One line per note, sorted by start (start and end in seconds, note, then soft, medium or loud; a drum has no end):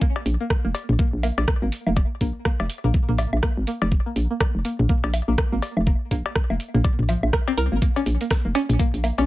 0.01 0.04 A#3 medium
0.01 kick loud
0.16 cowbell medium
0.26 0.37 A#1 medium
0.26 open hi-hat medium
0.40 0.46 A#3 medium
0.50 kick loud
0.50 cross-stick medium
0.65 0.72 F1 medium
0.65 0.67 A#3 medium
0.75 open hi-hat medium
0.75 cowbell medium
0.89 0.97 A#1 loud
0.89 mid tom medium
0.99 1.07 A#3 medium
0.99 kick loud
1.13 1.31 A#1 medium
1.23 1.26 A#3 medium
1.23 open hi-hat medium
1.23 low woodblock medium
1.38 1.45 A#1 medium
1.38 cowbell medium
1.48 kick loud
1.48 cross-stick medium
1.62 1.70 G#1 loud
1.62 1.67 A#3 medium
1.72 open hi-hat medium
1.87 2.04 F1 loud
1.87 1.89 A#3 medium
1.87 low woodblock medium
1.96 kick loud
1.96 cowbell medium
2.21 2.32 A#1 medium
2.21 2.29 A#3 medium
2.21 kick medium
2.21 open hi-hat medium
2.45 2.48 A#3 medium
2.45 kick loud
2.45 cross-stick medium
2.60 2.68 F1 medium
2.60 cowbell medium
2.60 low woodblock medium
2.70 open hi-hat medium
2.84 2.92 A#1 medium
2.84 2.89 A#3 medium
2.84 mid tom medium
2.94 kick loud
3.09 3.26 A#1 medium
3.09 3.11 A#3 medium
3.09 mid tom medium
3.18 open hi-hat medium
3.18 cowbell medium
3.18 low woodblock medium
3.33 3.41 A#1 medium
3.33 low woodblock medium
3.43 3.51 A#3 medium
3.43 kick loud
3.43 cross-stick medium
3.57 3.65 G#1 loud
3.67 3.70 A#3 medium
3.67 open hi-hat medium
3.82 4.00 F1 loud
3.82 cowbell medium
3.92 kick loud
4.06 4.11 A#3 medium
4.16 4.27 A#1 medium
4.16 open hi-hat medium
4.31 4.33 A#3 medium
4.40 kick loud
4.40 cross-stick medium
4.40 cowbell medium
4.55 4.63 F1 medium
4.65 4.72 A#3 medium
4.65 open hi-hat medium
4.79 4.87 A#1 loud
4.79 mid tom medium
4.89 4.92 A#3 medium
4.89 kick loud
5.04 5.22 A#1 medium
5.04 cowbell medium
5.14 open hi-hat medium
5.14 low woodblock medium
5.28 5.36 A#1 medium
5.28 5.33 A#3 medium
5.38 kick loud
5.38 cross-stick medium
5.52 5.60 G#1 loud
5.52 5.55 A#3 medium
5.62 open hi-hat medium
5.62 cowbell medium
5.77 5.95 F1 loud
5.77 low woodblock medium
5.87 5.94 A#3 medium
5.87 kick loud
6.11 6.22 A#1 loud
6.11 6.14 A#3 medium
6.11 kick medium
6.11 open hi-hat medium
6.26 cowbell medium
6.36 kick loud
6.36 cross-stick medium
6.50 6.58 F1 medium
6.50 6.55 A#3 medium
6.50 low woodblock medium
6.60 open hi-hat medium
6.74 6.82 A#1 loud
6.74 6.76 A#3 medium
6.74 mid tom medium
6.84 kick loud
6.84 cowbell medium
6.99 7.17 A#1 medium
6.99 mid tom medium
7.09 7.12 F3 medium
7.09 open hi-hat medium
7.09 low woodblock medium
7.23 7.31 A#1 medium
7.23 low woodblock medium
7.33 7.38 A#4 medium
7.33 kick loud
7.33 cross-stick medium
7.48 7.51 C4 loud
7.48 cowbell medium
7.57 7.69 C2 medium
7.57 7.65 A#4 loud
7.57 open hi-hat medium
7.72 7.80 G#1 medium
7.72 7.76 A#3 medium
7.82 7.85 A#3 medium
7.82 kick loud
7.82 closed hi-hat medium
7.82 shaker medium
7.96 8.00 C#4 loud
7.96 closed hi-hat soft
7.96 cowbell medium
8.06 8.17 A#1 medium
8.06 open hi-hat medium
8.06 shaker medium
8.21 8.26 A#3 medium
8.21 closed hi-hat soft
8.31 kick loud
8.31 cross-stick medium
8.31 snare loud
8.31 closed hi-hat medium
8.31 shaker medium
8.45 8.53 F1 medium
8.45 8.47 A#3 medium
8.55 8.60 C#4 loud
8.55 open hi-hat medium
8.55 cowbell medium
8.55 shaker medium
8.69 8.77 A#1 loud
8.69 closed hi-hat soft
8.69 mid tom medium
8.79 8.87 A#3 medium
8.79 kick loud
8.79 closed hi-hat medium
8.79 shaker medium
8.94 9.12 A#1 medium
8.94 closed hi-hat soft
9.04 9.07 A#3 medium
9.04 open hi-hat medium
9.04 low woodblock medium
9.04 shaker medium
9.18 9.26 A#1 medium
9.18 9.22 C#4 loud
9.18 closed hi-hat soft
9.18 cowbell medium